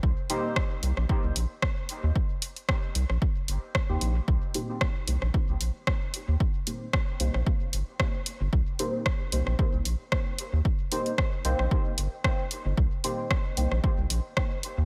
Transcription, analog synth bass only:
X:1
M:4/4
L:1/16
Q:"Swing 16ths" 1/4=113
K:Cm
V:1 name="Analog synth bass" clef=bass
C,, z4 z C,, B,,, z C,, B,,, z4 E,, | z6 C,, B,,, z2 G,,, z2 E,, B,,, z | C,, z4 z C,, B,,, z C,, B,,, z4 E,, | z6 C,, B,,, z2 G,,, z4 G,,, |
C,, z4 z C,, B,,, z C,, B,,, z4 E,, | z6 C,, B,,, z2 G,,, z4 G,,, | C,, z4 z C,, B,,, z C,, B,,, z4 E,, |]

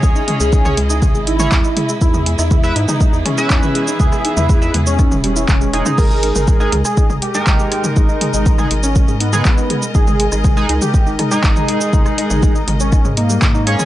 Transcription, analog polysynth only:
X:1
M:4/4
L:1/16
Q:1/4=121
K:G#m
V:1 name="Analog polysynth"
[CGc]4- [CGc] [CGc] z4 z [CGc] z4 | z4 z [EBe] z4 z [EBe]4- [EBe]- | [EBe]4- [EBe] [EBe] z8 [G,DG]2- | [G,DG]4- [G,DG] [G,DG] z4 z [G,DA]4- [G,DA]- |
[G,DA]4- [G,DA] [G,DG] z4 z [G,DG] z4 | z4 z [G,DG] z4 z [G,DG]4- [G,DG]- | [G,DG]4- [G,DG] z8 z [CGc]2 |]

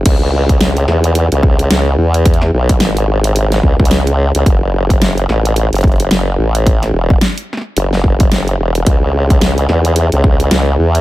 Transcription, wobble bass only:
X:1
M:4/4
L:1/16
Q:"Swing 16ths" 1/4=109
K:C#m
V:1 name="Wobble bass" clef=bass
C,,6 E,,3 C,,3 C,,2 E,,2- | E,,2 B,,,2 G,,,6 C,, C,,4 C,, | F,,,6 A,,,3 F,,,3 F,,,2 A,,,2- | A,,,2 E,,,2 z4 F,,,6 E,,,2 |
C,,6 E,,3 C,,3 C,,2 E,,2 |]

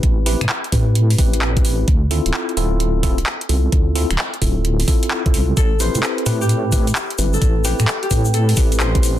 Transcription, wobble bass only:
X:1
M:4/4
L:1/16
Q:"Swing 16ths" 1/4=130
K:Am
V:1 name="Wobble bass" clef=bass
A,,,3 A,, z2 A,,4 A,,,6 | D,,3 D,,, z2 D,,,6 z2 C,,2 | D,,3 D,,, z2 D,,,4 z4 C,,2 | A,,,3 A,, z2 A,,6 z2 G,,,2 |
A,,,3 A,, z2 A,,4 A,,,6 |]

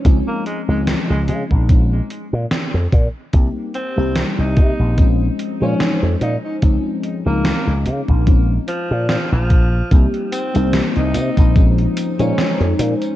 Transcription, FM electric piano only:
X:1
M:4/4
L:1/16
Q:"Swing 16ths" 1/4=73
K:Bbdor
V:1 name="FM electric piano"
[F,A,CDE]3 [F,A,CDE]4- [F,A,CDE] [F,A,CDE] z6 z | [G,B,CEG]3 [G,B,CEG]4- [G,B,CEG] [F,A,CDE]3 [F,A,DEc]4- [F,A,DEc] | [F,A,CDE]3 [F,A,CDE]4- [F,A,CDE] [F,A,CDE] z6 z | [G,B,CEG]3 [G,B,CEG]4- [G,B,CEG] [F,A,CDE]3 [F,A,DEc]4- [F,A,DEc] |]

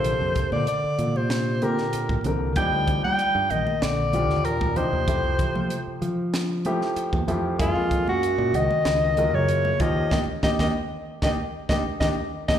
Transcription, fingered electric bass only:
X:1
M:4/4
L:1/16
Q:1/4=95
K:Eblyd
V:1 name="Fingered electric bass" clef=bass
B,,, F,, z B,, z2 B,,6 z A,,, C,,2 | E,, D,,2 z2 G,, B,,, z B,,,3 E,,4 E,, | F,, C,, z F, z2 F,6 z =E,, F,,2 | _G,, F,,2 z2 B,, _D,, z D,,3 G,,3 E,,2 |
E,, z E,, E,, z3 E,, z2 E,, z E,, z2 E,, |]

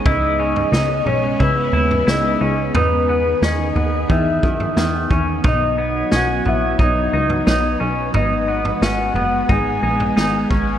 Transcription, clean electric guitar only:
X:1
M:4/4
L:1/8
Q:1/4=89
K:B
V:1 name="Clean electric guitar"
E C D C E E E C | D B, C B, D, D, D, C | D B, C B, D D D C | D B, C B, D D D C |]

